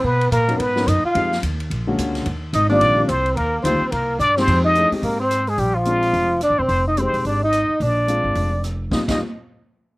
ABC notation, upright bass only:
X:1
M:4/4
L:1/8
Q:"Swing" 1/4=216
K:Eb
V:1 name="Upright bass" clef=bass
=B,,2 ^A,,2 _A,,2 ^F,, z | F,,2 E,,2 B,,,2 ^C,,2 | E,,2 A,,,2 B,,,2 C,,2 | E,,2 D,, z C,,2 G,,2 |
F,,3 z A,,4 | B,,,4 F,,,2- (3F,,, A,,, _F,,, | F,,,3 _F,,, A,,,3 z | B,,,3 A,,, F,,,4 |
E,, E,, z6 |]